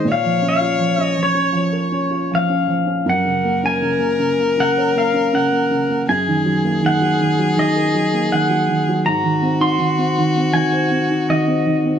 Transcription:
0.05 A#2 C#5
0.12 F5
0.24 F3
0.42 C#4
0.48 F5
0.61 F4
0.79 F3
0.98 C#4
1.04 D#5
1.17 F3
1.23 C#5
1.35 C#4
1.53 F3
1.72 A#4
1.92 C#4
2.10 F4
2.31 F3 F5
2.49 C#4
2.68 F3
2.86 C#4
3.06 F#2 A#4 F#5
3.25 C#3
3.44 A#3
3.63 C#4 G#5
3.82 C#3
3.99 A#3
4.19 C#3
4.39 A#3
4.58 C#3 F#5
4.78 C#5
4.95 A#3 F5
5.14 C#4
5.33 C#3 F#5
5.51 A#3
5.71 C#3
5.89 A#3
6.09 F#2 G#4 G#5
6.28 D#3
6.45 F#3
6.64 A#3
6.82 D#3 F#5
7.01 F#3
7.20 D#3
7.39 F#3
7.57 D#3 D#5
7.76 A#4
7.95 F#3
8.13 A#3
8.32 D#3 F#5
8.50 F#3
8.69 D#3
8.89 F#3
9.06 G#2 F#4 A#5
9.24 D#3
9.42 C4
9.60 D#4 C6
9.79 D#3
9.98 C4
10.18 D#3
10.37 C4
10.54 D#3 G#5
10.72 C5
10.91 C4
11.10 D#4
11.30 D#3 D#5
11.47 C4
11.67 D#3
11.86 C4

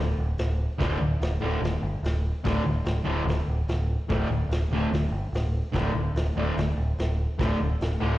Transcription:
Already playing: D1
0.18 D1
0.38 D1, snare, open hi-hat
0.78 D1 D2 A2 D3, kick, snare, open hi-hat
1.01 D1
1.21 D1, snare, open hi-hat
1.41 D1 D2 A2 D3
1.62 D1, snare, open hi-hat
1.82 G1
2.03 D1, snare, open hi-hat
2.44 D1 D2 A2 D3, kick, snare, open hi-hat
2.66 D1
2.85 D1, snare, open hi-hat
3.05 D1 D2 A2 D3
3.25 D1, open hi-hat
3.30 snare
3.48 D1
3.68 D1, snare, open hi-hat
4.09 D1 D2 A2 D3, kick, snare, open hi-hat
4.28 D1
4.49 D1, snare, open hi-hat
4.71 D1 D2 A2 D3
4.92 D1, snare, open hi-hat
5.11 G1
5.33 D1, snare, open hi-hat
5.73 D1 D2 A2 D3, kick, snare, open hi-hat
5.94 D1
6.15 D1, snare, open hi-hat
6.36 D1 D2 A2 D3
6.57 D1, snare, open hi-hat
6.78 D1
6.99 D1, snare, open hi-hat
7.39 D1 D2 A2 D3, kick, snare, open hi-hat
7.60 D1
7.81 D1, snare, open hi-hat
8.00 D1 D2 A2 D3

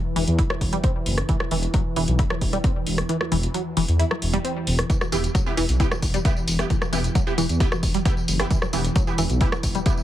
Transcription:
Already playing: E3
0.16 E1 E3, open hi-hat
0.27 E2, closed hi-hat
0.39 E4, kick, closed hi-hat
0.50 F#3, cross-stick
0.61 E1, kick, open hi-hat
0.73 G3, closed hi-hat
0.84 C4, kick, closed hi-hat
1.06 F#1, open hi-hat
1.18 cross-stick, closed hi-hat
1.29 E3, kick, closed hi-hat
1.40 F#3, cross-stick
1.51 E1 E3, open hi-hat
1.63 closed hi-hat
1.74 F#3, kick, closed hi-hat
1.96 E1 E3, open hi-hat
2.08 B1, closed hi-hat
2.19 E4, kick, closed hi-hat
2.30 F#3, cross-stick
2.41 E1, kick, open hi-hat
2.53 G3, closed hi-hat
2.64 C4, kick, closed hi-hat
2.87 E1, open hi-hat
2.98 cross-stick, closed hi-hat
3.09 E3, closed hi-hat
3.21 F#3, cross-stick
3.32 E1 E3, open hi-hat
3.43 closed hi-hat
3.54 F#3, closed hi-hat
3.77 E1 E3, open hi-hat
3.88 E2, closed hi-hat
3.99 E4, closed hi-hat
4.11 F#3, cross-stick
4.22 E1, open hi-hat
4.33 G3, closed hi-hat
4.44 C4, closed hi-hat
4.67 E1, open hi-hat
4.79 cross-stick, closed hi-hat
4.90 E3, kick, closed hi-hat, tambourine
5.01 F#3, cross-stick, tambourine
5.12 E1 E3 B3 E4 G4, open hi-hat, tambourine
5.24 closed hi-hat, tambourine
5.35 F#3, kick, closed hi-hat, tambourine
5.46 B3 E4 G4, tambourine
5.57 E1 E3, open hi-hat, tambourine
5.69 B1, closed hi-hat, tambourine
5.80 B3 E4 G4, kick, closed hi-hat, tambourine
5.92 F#3, cross-stick, tambourine
6.02 E1, kick, open hi-hat, tambourine
6.14 G3, closed hi-hat, tambourine
6.25 B3 E4 G4, kick, closed hi-hat, tambourine
6.37 tambourine
6.48 E1, open hi-hat, tambourine
6.59 B3 E4 G4, cross-stick, closed hi-hat, tambourine
6.70 E3, kick, closed hi-hat, tambourine
6.82 F#3, cross-stick, tambourine
6.93 E1 E3 B3 E4 G4, open hi-hat, tambourine
7.04 closed hi-hat, tambourine
7.15 F#3, kick, closed hi-hat, tambourine
7.27 B3 E4 G4, tambourine
7.38 E1 E3, open hi-hat, tambourine
7.49 E2, closed hi-hat, tambourine
7.60 B3 E4 G4, kick, closed hi-hat, tambourine
7.72 F#3, cross-stick, tambourine
7.83 E1, kick, open hi-hat, tambourine
7.94 G3, closed hi-hat, tambourine
8.05 B3 E4 G4, kick, closed hi-hat, tambourine
8.17 tambourine
8.28 F#1, open hi-hat, tambourine
8.40 B3 E4 G4, cross-stick, closed hi-hat, tambourine
8.51 E3, kick, closed hi-hat, tambourine
8.62 F#3, cross-stick, tambourine
8.73 E1 E3 B3 E4 G4, open hi-hat, tambourine
8.85 closed hi-hat, tambourine
8.96 F#3, kick, closed hi-hat, tambourine
9.07 B3 E4 G4, tambourine
9.18 E1 E3, open hi-hat, tambourine
9.30 B1, closed hi-hat, tambourine
9.41 B3 E4 G4, kick, closed hi-hat, tambourine
9.52 F#3, cross-stick, tambourine
9.63 E1, kick, open hi-hat, tambourine
9.75 G3, closed hi-hat, tambourine
9.86 B3 E4 G4, kick, closed hi-hat, tambourine
9.97 tambourine

